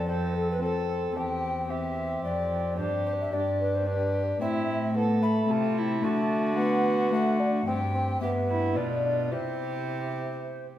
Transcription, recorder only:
0.07 C5
0.34 A4
0.51 B4
0.63 A4
1.17 G5
1.70 E5
2.25 D5
2.77 C5
3.06 C5
3.21 E5
3.33 D5
3.61 B4
3.75 C5
3.87 B4
4.41 E5
5.23 B5
5.51 A5
6.04 A5
6.57 F#5
7.12 F#5
7.66 G5
8.21 E5
8.76 D5
9.31 C5

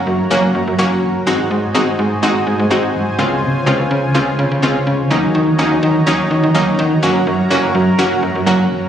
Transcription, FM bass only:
0.07 F#2
0.31 F#1
0.55 F#2
0.67 F#2
0.79 F#1
1.03 F#2
1.27 G#1
1.51 G#2
1.75 G#1
1.87 G#1
1.99 G#2
2.23 G#1
2.47 G#2
2.59 G#2
2.71 G#1
2.95 G#2
3.19 C#2
3.43 C#3
3.67 C#2
3.79 C#2
3.91 C#3
4.15 C#2
4.39 C#3
4.51 C#3
4.63 C#2
4.87 C#3
5.11 D#2
5.35 D#3
5.59 D#2
5.71 D#2
5.83 D#3
6.07 D#2
6.31 D#3
6.43 D#3
6.55 D#2
6.79 D#3
7.03 F#1
7.27 F#2
7.51 F#1
7.63 F#1
7.75 F#2
7.99 F#1
8.23 F#2
8.35 F#2
8.47 F#1
8.71 F#2

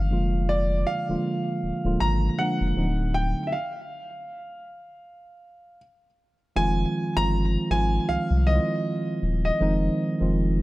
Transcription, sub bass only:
Already playing: G1
0.11 F1
1.10 D1
1.63 D1
1.85 D1
2.01 G#1
2.61 F1
2.77 D1
6.57 F1
7.17 G1
7.71 G#1
8.09 C2
8.31 C2
9.23 D#1
9.61 F1
10.21 F1

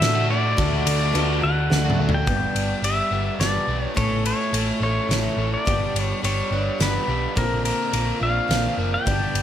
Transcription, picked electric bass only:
0.01 A2
0.58 D2
0.86 D2
1.14 D2
1.43 D2
1.71 D2
1.99 D2
2.27 G1
2.55 G1
2.82 G1
3.11 G1
3.39 G1
3.67 B1
3.97 A1
4.53 A1
4.80 A1
5.09 A1
5.36 A1
5.67 G1
5.94 G1
6.23 G1
6.51 G1
6.80 G1
7.08 B1
7.37 A#1
7.93 A#1
8.21 A#1
8.49 A#1
8.77 F#1
9.07 G1
9.34 G1

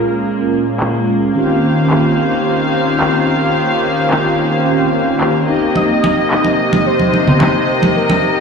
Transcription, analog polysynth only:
Already playing: A#2 G#3 A#3 C#4 F4
1.35 D#3 A#3 C4 C#4 F4 G4
5.47 A#3 C4 D#4 G4

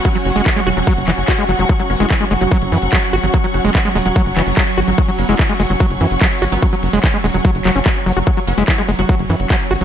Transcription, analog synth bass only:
0.26 F#1
0.36 F#1
0.67 E1
0.77 E1
0.97 F#1
1.08 F#1
1.18 F#1
1.49 F#1
1.59 F#1
1.90 F#1
2.00 F#1
2.31 F#1
2.41 F#1
2.62 F#1
2.72 F#2
2.82 F#1
3.13 G#1
3.23 G#1
3.54 F#1
3.65 F#1
3.95 E1
4.06 E1
4.26 F#1
4.37 F#1
4.47 F#1
4.78 G#1
4.88 G#1
5.19 F#1
5.29 F#1
5.60 F#1
5.70 F#1
5.91 F#1
6.01 F#2
6.11 F#1
6.42 G#1
6.52 G#1
6.83 F#1
6.93 F#1
7.24 E1
7.34 E1
7.55 F#1
7.65 F#1
7.76 F#1
8.06 F#1
8.17 F#1
8.47 F#1
8.58 F#1
8.89 F#1
8.99 F#1
9.19 F#1
9.30 F#2
9.40 F#1
9.71 G#1
9.81 G#1

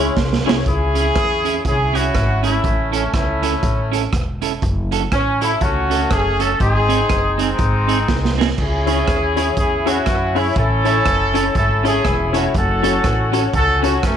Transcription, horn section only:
Already playing: G#3 C#4 E4
0.66 C#4 E4 G#4
1.66 C#4 E4 G#4
1.95 C#4 F#4
2.44 A3 C#4 E4
2.94 C#4
3.14 A3 C#4 E4
5.13 C#4
5.41 E4
5.62 A3 C#4 F#4
6.11 G#4
6.41 A4
6.61 C4 D#4 G#4
7.40 G#3 C4 D#4
8.59 C#4 E4 G#4
9.58 C#4 E4 G#4
9.87 C#4 F#4
10.37 E4
10.57 C#4 E4 A4
11.57 C#4 E4 A4
11.86 C#4 E4 G#4
12.35 F#4
12.56 C#4 F#4 A4
13.54 C#4 F#4 A4
13.83 F#4
14.04 F#3 A3 C#4

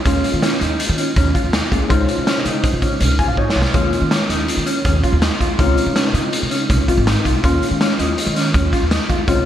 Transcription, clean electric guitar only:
0.05 C#4
0.42 C#4
0.61 D#4
0.98 C#4
1.16 C#4
1.34 F4
1.53 D#4
1.72 F4
1.90 C#4
2.27 C#4
2.45 D#4
2.82 C#4
3.01 C#4
3.19 F4
3.38 D#4
3.56 F4
3.74 C#4
4.11 C#4
4.29 D#4
4.66 C#4
4.84 C#4
5.03 F4
5.22 D#4
5.40 F4
5.59 C#4
5.95 C#4
6.14 D#4
6.51 C#4
6.69 C#4
6.88 F4
7.07 D#4
7.25 F4
7.43 C#4
7.81 C#4
7.99 D#4
8.36 C#4
8.54 C#4
8.73 F4
8.91 D#4
9.10 F4
9.28 C#4

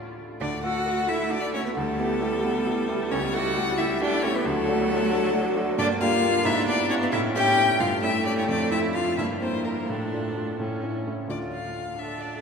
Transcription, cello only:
0.41 D4
0.64 F#4
1.09 E4
1.31 D4
1.54 C#4
1.65 B3
1.76 A3
3.11 C#4
3.34 F#4
3.78 E4
4.01 D4
4.23 C#4
4.34 B3
4.46 A3
5.78 D4
6.00 F4
6.45 E4
6.67 D4
6.90 C#4
7.00 B3
7.12 E4
7.35 G4
7.80 F4
8.03 E4
8.25 D4
8.37 C#4
8.48 D4
8.71 E4
8.95 F4
9.18 E4
9.42 C4
9.65 A#3
9.88 A3
11.99 A4

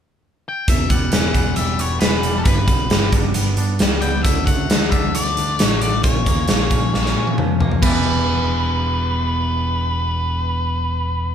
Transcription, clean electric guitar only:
0.69 E2
0.91 G3
1.13 E3
1.37 B3
1.58 G3
1.81 B3
2.03 E3
2.25 G3
2.46 G2
2.69 B3
2.91 G3
3.13 D4
3.35 B3
3.58 D4
3.81 G3
4.03 B3
4.25 D3
4.47 A3
4.71 D3
4.93 D4
5.15 A3
5.38 D4
5.60 D3
5.83 A3
6.06 A#2
6.28 A#3
6.49 F3
6.72 C#4
6.94 A#3
7.17 C#4
7.39 F3
7.61 A#3
7.82 E2 B2 E3 G3 B3
7.86 E4

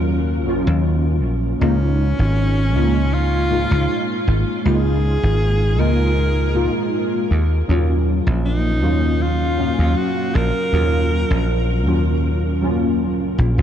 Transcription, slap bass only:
Already playing: D#2
0.47 A#1
0.67 D#2
1.23 A#1
1.61 C#2
2.19 G#1
2.75 C#2
3.71 C#2
4.27 G#1
4.65 C#2
5.23 G#1
5.79 C#2
7.31 D#2
7.69 D#2
8.27 A#1
8.83 D#2
9.79 D#2
10.35 A#1
10.73 D#2
11.30 A#1
11.87 D#2
13.20 C#2
13.38 A#1
13.58 A#1

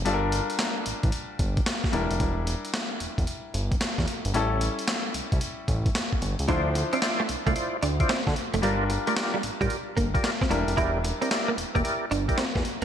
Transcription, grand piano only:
0.05 G3 D4 F4 A4
0.14 A#4
1.92 G3 D4 E4 A#4
4.34 G3 C#4 E4 A4
6.48 F3 D4 E4 C5
8.62 G3 D4 F4 A#4
10.49 G3 D4 E4 A#4

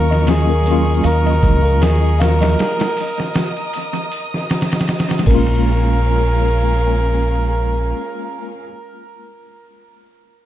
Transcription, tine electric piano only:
Already playing: F#3 A#3 C#4 F4
0.26 F#3 A#3 C#4
0.30 F4
0.62 F#3 A#3
0.67 C#4 F4
5.21 G#3
5.25 A#3
5.30 C#4
5.35 F4

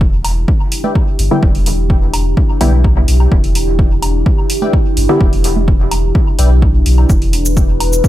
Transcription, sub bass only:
Already playing: E1
1.19 G1
1.43 E1
2.61 B1
3.08 B1
3.32 E1
4.97 G1
5.21 E1
6.39 B1
6.86 B1
7.10 E1

